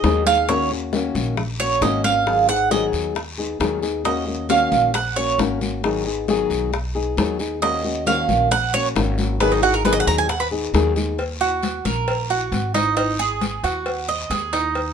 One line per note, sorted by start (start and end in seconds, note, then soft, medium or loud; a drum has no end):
0.00 1.09 D#2 loud
0.00 0.23 D#5 loud
0.00 high bongo medium
0.00 low bongo medium
0.00 high conga medium
0.04 0.26 D#3 medium
0.04 0.26 F#3 medium
0.04 0.26 B3 medium
0.04 0.26 D#4 medium
0.04 0.25 G#4 medium
0.04 short guiro medium
0.26 0.48 B3 soft
0.26 0.48 D#4 soft
0.26 0.47 G#4 soft
0.26 0.48 F5 loud
0.26 high bongo soft
0.26 high conga medium
0.26 short guiro medium
0.49 0.70 D#3 medium
0.49 0.70 A#3 medium
0.49 0.70 C#4 medium
0.49 0.70 F#4 medium
0.49 0.70 C#5 medium
0.49 high bongo medium
0.49 high conga soft
0.49 long guiro medium
0.71 0.92 A#3 soft
0.71 0.93 C#4 soft
0.71 0.92 F#4 medium
0.71 high conga soft
0.93 1.37 D#3 medium
0.93 1.37 A#3 medium
0.93 1.37 C#4 medium
0.93 1.37 F#4 medium
0.93 high bongo medium
0.93 high conga loud
0.93 short guiro medium
1.15 1.78 A#1 medium
1.15 high conga medium
1.15 low conga medium
1.15 short guiro medium
1.37 muted nylon-string guitar stroke medium
1.37 high bongo medium
1.37 high conga soft
1.37 low conga medium
1.37 long guiro medium
1.60 1.81 A#3 soft
1.60 1.82 C#4 soft
1.60 1.81 F#4 soft
1.60 1.81 C#5 loud
1.60 high conga soft
1.81 2.87 G#1 loud
1.81 2.03 D#3 medium
1.81 2.04 A#3 medium
1.81 2.04 C#4 medium
1.81 2.03 F#4 medium
1.81 2.04 D#5 medium
1.81 high bongo medium
1.81 low bongo medium
1.81 high conga medium
1.81 short guiro medium
2.04 2.27 A#3 soft
2.04 2.26 C#4 soft
2.04 2.26 F#4 soft
2.04 2.46 F5 medium
2.04 high conga medium
2.04 short guiro medium
2.26 2.48 D#3 medium
2.26 2.48 F#3 medium
2.26 2.48 B3 medium
2.26 2.49 D#4 medium
2.26 2.48 G#4 medium
2.26 high bongo medium
2.26 high conga soft
2.26 long guiro medium
2.49 2.71 B3 soft
2.49 2.71 D#4 soft
2.49 2.70 G#4 medium
2.49 2.71 F#5 loud
2.49 high conga soft
2.71 3.15 D#3 medium
2.71 3.15 F#3 medium
2.71 3.15 B3 medium
2.71 3.15 D#4 medium
2.71 3.16 G#4 medium
2.71 2.85 D#5 medium
2.71 high bongo medium
2.71 high conga loud
2.71 short guiro medium
2.93 3.56 D#2 medium
2.93 high bongo soft
2.93 short guiro medium
3.15 muted nylon-string guitar stroke medium
3.15 high bongo medium
3.15 high conga soft
3.15 long guiro medium
3.38 3.59 B3 soft
3.38 3.60 D#4 soft
3.38 3.59 G#4 soft
3.38 high bongo soft
3.38 high conga soft
3.60 4.66 D#2 loud
3.60 3.82 D#3 medium
3.60 3.82 F#3 medium
3.60 3.82 B3 medium
3.60 3.82 D#4 medium
3.60 3.81 G#4 medium
3.60 high bongo medium
3.60 low bongo medium
3.60 high conga medium
3.60 short guiro medium
3.82 4.05 B3 soft
3.82 4.04 D#4 soft
3.82 4.04 G#4 soft
3.82 high bongo soft
3.82 short guiro medium
4.05 4.26 D#3 medium
4.05 4.27 A#3 medium
4.05 4.26 C#4 medium
4.05 4.26 F#4 medium
4.05 4.47 D#5 medium
4.05 high bongo medium
4.05 high conga soft
4.05 long guiro medium
4.27 4.49 A#3 soft
4.27 4.49 C#4 soft
4.27 4.49 F#4 soft
4.27 high conga soft
4.49 4.93 D#3 medium
4.49 4.93 A#3 medium
4.49 4.94 C#4 medium
4.49 4.94 F#4 medium
4.49 4.91 F5 medium
4.49 high bongo medium
4.49 high conga medium
4.49 short guiro medium
4.72 5.35 A#1 medium
4.72 high conga medium
4.72 low conga medium
4.72 short guiro medium
4.94 5.16 F#5 loud
4.94 muted nylon-string guitar stroke medium
4.94 high bongo medium
4.94 high conga soft
4.94 long guiro medium
5.16 5.38 A#3 soft
5.16 5.38 C#4 soft
5.16 5.38 F#4 medium
5.16 5.38 C#5 medium
5.16 high conga soft
5.38 6.44 G#1 medium
5.38 5.60 D#3 medium
5.38 5.60 A#3 medium
5.38 5.61 C#4 medium
5.38 5.60 F#4 medium
5.38 high bongo medium
5.38 low bongo medium
5.38 high conga medium
5.38 short guiro medium
5.61 5.83 A#3 soft
5.61 5.83 C#4 soft
5.61 5.83 F#4 soft
5.61 high conga medium
5.61 short guiro medium
5.84 6.05 D#3 medium
5.84 6.05 F#3 medium
5.84 6.06 B3 medium
5.84 6.06 D#4 medium
5.84 6.05 G#4 medium
5.84 high bongo medium
5.84 high conga soft
5.84 long guiro medium
6.06 6.28 B3 soft
6.06 6.28 D#4 soft
6.06 6.27 G#4 soft
6.06 high conga soft
6.28 6.72 D#3 medium
6.28 6.72 F#3 medium
6.28 6.72 B3 medium
6.28 6.72 D#4 medium
6.28 6.73 G#4 medium
6.28 high bongo medium
6.28 high conga medium
6.28 short guiro medium
6.50 7.13 B1 medium
6.50 high bongo soft
6.50 high conga soft
6.50 short guiro medium
6.73 muted nylon-string guitar stroke medium
6.73 high bongo medium
6.73 high conga soft
6.73 long guiro medium
6.95 7.17 B3 soft
6.95 7.17 D#4 soft
6.95 7.16 G#4 medium
6.95 high bongo soft
6.95 high conga soft
7.17 8.23 D#2 medium
7.17 7.39 D#3 medium
7.17 7.39 F#3 medium
7.17 7.39 B3 medium
7.17 7.39 D#4 medium
7.17 7.38 G#4 medium
7.17 high bongo medium
7.17 low bongo medium
7.17 high conga medium
7.17 short guiro medium
7.39 7.62 B3 soft
7.39 7.61 D#4 soft
7.39 7.61 G#4 soft
7.39 high bongo soft
7.39 short guiro medium
7.62 7.83 D#3 medium
7.62 7.83 A#3 medium
7.62 7.84 C#4 medium
7.62 7.83 F#4 medium
7.62 8.04 D#5 medium
7.62 high bongo medium
7.62 high conga soft
7.62 long guiro medium
7.84 8.06 A#3 soft
7.84 8.06 C#4 soft
7.84 8.06 F#4 medium
7.84 high conga soft
8.06 8.50 D#3 medium
8.06 8.50 A#3 medium
8.06 8.51 C#4 medium
8.06 8.51 F#4 medium
8.06 8.48 F5 loud
8.06 high bongo medium
8.06 high conga loud
8.06 short guiro medium
8.28 8.92 A#1 medium
8.28 high conga medium
8.28 low conga medium
8.28 short guiro medium
8.51 8.73 F#5 loud
8.51 muted nylon-string guitar stroke medium
8.51 high bongo medium
8.51 high conga soft
8.51 low conga medium
8.51 long guiro medium
8.74 8.95 A#3 soft
8.74 8.95 C#4 soft
8.74 8.95 F#4 soft
8.74 8.87 C#5 loud
8.74 high conga soft
8.95 10.01 G#1 loud
8.95 9.17 D#3 medium
8.95 9.17 A#3 medium
8.95 9.18 C#4 medium
8.95 9.16 F#4 medium
8.95 high bongo medium
8.95 low bongo medium
8.95 high conga medium
8.95 short guiro medium
9.18 9.40 A#3 soft
9.18 9.40 C#4 soft
9.18 9.39 F#4 soft
9.18 high conga medium
9.18 short guiro medium
9.40 9.62 D#3 medium
9.40 9.62 F#3 medium
9.40 9.62 B3 medium
9.40 9.62 D#4 medium
9.40 9.62 G#4 medium
9.40 9.51 B4 medium
9.40 high bongo medium
9.40 long guiro medium
9.52 9.62 D#4 medium
9.63 9.84 B3 soft
9.63 9.84 D#4 medium
9.63 9.74 F#4 loud
9.63 9.84 G#4 medium
9.63 high conga soft
9.74 9.85 A#4 medium
9.85 10.28 D#3 medium
9.85 10.28 F#3 medium
9.85 10.29 B3 medium
9.85 10.29 D#4 medium
9.85 10.29 G#4 medium
9.85 9.92 B4 medium
9.85 high bongo medium
9.85 high conga loud
9.85 short guiro medium
9.93 10.00 D#5 loud
10.00 10.07 F#5 medium
10.07 10.70 D#2 loud
10.07 10.18 A#5 loud
10.07 high bongo soft
10.07 short guiro medium
10.18 10.29 G#5 medium
10.29 10.40 F#5 medium
10.29 muted nylon-string guitar stroke medium
10.29 high bongo medium
10.29 high conga soft
10.29 long guiro medium
10.40 10.47 B4 medium
10.51 10.73 B3 soft
10.51 10.73 D#4 medium
10.51 10.73 G#4 medium
10.51 high bongo soft
10.51 high conga soft
10.73 11.79 D#2 loud
10.73 10.95 D#3 medium
10.73 10.95 F#3 medium
10.73 10.96 B3 medium
10.73 10.96 D#4 medium
10.73 10.94 G#4 medium
10.73 high bongo medium
10.73 low bongo medium
10.73 high conga medium
10.73 short guiro medium
10.96 11.18 B3 soft
10.96 11.18 D#4 soft
10.96 11.17 G#4 soft
10.96 high bongo soft
10.96 high conga medium
10.96 short guiro medium
11.18 cowbell loud
11.18 high conga soft
11.18 long guiro medium
11.41 11.84 F#4 medium
11.41 high conga soft
11.63 cowbell medium
11.63 high conga loud
11.63 short guiro medium
11.85 12.48 A#1 medium
11.85 12.29 A#4 medium
11.85 high conga loud
11.85 low conga medium
11.85 short guiro medium
12.08 cowbell loud
12.08 high conga soft
12.08 long guiro medium
12.30 12.73 F#4 medium
12.30 high conga soft
12.52 13.57 G#1 loud
12.52 cowbell medium
12.52 high conga medium
12.52 short guiro medium
12.74 12.95 D#4 medium
12.74 cowbell medium
12.74 high conga medium
12.74 short guiro medium
12.97 13.18 D#4 medium
12.97 cowbell loud
12.97 high conga soft
12.97 long guiro medium
13.19 13.63 G#4 medium
13.19 high conga soft
13.41 cowbell medium
13.41 high conga loud
13.41 short guiro medium
13.63 14.27 D#2 medium
13.63 14.07 F#4 medium
13.63 cowbell medium
13.63 high conga soft
13.63 short guiro medium
13.86 cowbell medium
13.86 high conga soft
13.86 long guiro medium
14.08 14.30 D#5 medium
14.08 high conga soft
14.30 14.93 D#2 loud
14.30 14.52 G#4 medium
14.30 cowbell medium
14.30 high conga medium
14.30 short guiro medium
14.53 14.93 D#4 medium
14.53 cowbell medium
14.53 short guiro medium
14.75 cowbell loud
14.75 high conga soft
14.75 long guiro medium